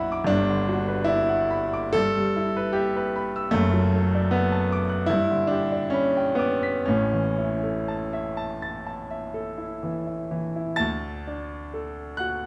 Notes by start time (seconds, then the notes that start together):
Already playing: B1 F#2 E4 F#4 B4 D5 F#5 B5
0.12 D6
0.24 G2 D4
0.29 G1
0.50 D3
0.69 F#4
0.88 B4
1.04 E4 D5
1.29 F#5
1.51 B5
1.73 D6
1.93 G2 A4
2.17 G3
2.36 E4
2.57 B4
2.73 G4 E5
2.96 B4
3.16 B5
3.36 E6
3.51 F#1 F#2 A3
3.73 F#3
3.94 A4
4.15 D5
4.31 B3 F#5
4.52 A5
4.72 D6
4.89 F#6
5.06 G2 E4
5.31 D3
5.47 D4 G4
5.72 D5
5.90 C#4 B5
6.17 G5
6.35 B3
6.39 D6
6.63 B6
6.85 A1 A2 C#4
7.13 E3
7.38 E4
7.63 A4
7.88 A5
8.13 E5
8.37 A5
8.62 A6
8.86 A5
9.10 E5
9.34 A4
9.58 E4
9.83 E3
10.07 E4
10.31 E3
10.56 E4
10.76 D2 A5 A6
11.27 D4
11.74 A4
12.17 F#4 F#5 F#6